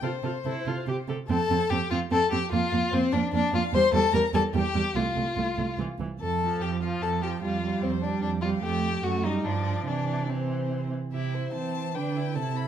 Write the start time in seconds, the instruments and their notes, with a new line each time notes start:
0.02 cello C3, viola F4, violin A4 C5
0.23 cello C3, viola F4, violin A4
0.45 cello C3, viola E4, violin A4
0.66 cello C3, viola F4, violin A4
0.87 cello C3, viola G4, violin G4
1.08 cello C3, violin G4, viola A4
1.28 cello F2, viola C4, violin A4 A5
1.50 cello F2, viola C4
1.69 cello F2, viola C4, violin G4 G5
1.90 cello F2, viola C4, violin F4 F5
2.11 cello F2, viola C4, violin A4 A5
2.32 cello F2, viola C4, violin G4 G5
2.52 cello F2, viola A#3, violin F4 F5
2.72 cello F2, viola A#3
2.92 cello F2, viola A#3, violin C4 C5
3.12 cello F2, viola A#3, violin D4 D5
3.32 cello F2, viola A#3, violin D4 D5
3.52 cello F2, viola A#3, violin F4 F5
3.72 cello E2, viola G3, violin C5 C6
3.93 cello E2, viola G3, violin A4 A5
4.13 cello E2, viola G3, violin A#4 A#5
4.34 cello E2, viola G3, violin A4 A5
4.54 cello E2, viola G3, violin G4 G5
4.74 cello E2, viola G3
4.95 cello C2, viola A3, violin F4 F5
5.16 cello C2, viola A3
5.36 cello C2, viola A3
5.57 cello C2, viola A3
5.78 cello C2, viola E3
5.99 cello C2, viola E3
6.19 cello F2, violin A4 A5
6.41 viola F3
6.60 cello F2, violin G4 G5
6.82 viola F3, violin F4 F5
7.01 cello F2, violin A4 A5
7.22 viola F3, violin G4 G5
7.42 cello F2, viola G3, violin F4 F5
7.63 viola G3
7.82 cello F2, violin C4 C5
8.02 viola G3, violin D4 D5
8.21 cello F2, violin D4 D5
8.41 viola G3, violin F4 F5
8.62 cello F2, viola A3, violin G4 G5
9.03 cello F#2, viola A3, violin F#4 F#5
9.24 viola G3, violin D#4 D#5
9.44 cello G2, viola F3, violin D4 D5
9.86 cello C3, viola E3, violin D4 D5
10.29 viola E3, violin C4 C5
11.13 cello C3, viola E4, violin G4 E5
11.34 violin C5
11.53 cello E3, viola C4, violin A5
11.95 cello D3, viola D4, violin B4 G5
12.16 viola E4
12.35 cello C3, viola E4, violin A4 A5
12.56 violin B5